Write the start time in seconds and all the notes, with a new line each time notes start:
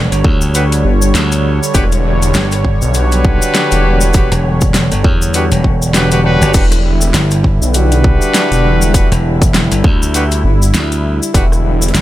Already playing: D3 G3 C#5
0.12 G1, cross-stick, closed hi-hat, cabasa
0.15 cross-stick
0.21 D2, kick, cross-stick
0.25 cross-stick
0.31 cross-stick
0.35 cross-stick
0.41 cabasa
0.54 D4 F#4 G4 B4, closed hi-hat, cabasa
0.72 closed hi-hat, cabasa
0.85 G1
1.02 cabasa
1.14 D2, snare, closed hi-hat, cabasa
1.32 closed hi-hat, cabasa
1.63 cabasa
1.74 E1 D4 F#4 G4 B4, kick, closed hi-hat, cabasa
1.84 cross-stick
1.92 closed hi-hat, cabasa
2.22 closed hi-hat, cabasa
2.34 G1, snare, closed hi-hat, cabasa
2.51 cross-stick, closed hi-hat, cabasa
2.64 kick
2.82 B1, cabasa
2.94 D4 F#4 G4 B4, closed hi-hat, cabasa
3.12 closed hi-hat, cabasa
3.25 kick
3.42 cabasa
3.55 snare, closed hi-hat, cabasa
3.71 E1, closed hi-hat, cabasa
4.01 cabasa
4.13 D4 F#4 G4 B4, kick, closed hi-hat, cabasa
4.32 E1, cross-stick, closed hi-hat, cabasa
4.61 kick, closed hi-hat, cabasa
4.74 snare, closed hi-hat, cabasa
4.92 G1, cross-stick, closed hi-hat, cabasa
5.04 E2, kick
5.22 cabasa
5.34 D4 F#4 G4 B4, closed hi-hat, cabasa
5.52 E1, closed hi-hat, cabasa
5.64 kick
5.82 cabasa
5.94 D4 F#4 G4 B4, snare, closed hi-hat, cabasa
6.11 D4 F#4 G4 B4, closed hi-hat, cabasa
6.24 D4 F#4 G4 B4
6.41 G1, cabasa
6.54 E1 D4 E4 F#4 G4 B4, kick, closed hi-hat, crash, cabasa
6.72 cross-stick, closed hi-hat, cabasa
7.01 closed hi-hat, cabasa
7.14 G1, snare, closed hi-hat, cabasa
7.31 cross-stick, closed hi-hat, cabasa
7.44 kick
7.62 B1, cabasa
7.74 D4 F#4 G4 B4, closed hi-hat, cabasa
7.92 closed hi-hat, cabasa
8.04 kick
8.22 cabasa
8.34 snare, closed hi-hat, cabasa
8.51 E1, closed hi-hat, cabasa
8.82 cabasa
8.94 D4 F#4 G4 B4, kick, closed hi-hat, cabasa
9.12 E1, cross-stick, closed hi-hat, cabasa
9.42 kick, closed hi-hat, cabasa
9.54 snare, closed hi-hat, cabasa
9.72 G1, cross-stick, closed hi-hat, cabasa
9.84 D2, kick
10.02 cabasa
10.14 D4 F#4 G4 B4, closed hi-hat, cabasa
10.32 closed hi-hat, cabasa
10.44 G1
10.62 cabasa
10.74 D2, snare, closed hi-hat, cabasa
10.92 closed hi-hat, cabasa
11.22 cabasa
11.34 E1 D4 F#4 G4 B4, kick, closed hi-hat, cabasa
11.52 cross-stick, cabasa
11.82 cabasa
11.88 closed hi-hat
11.94 G1, snare, closed hi-hat, cabasa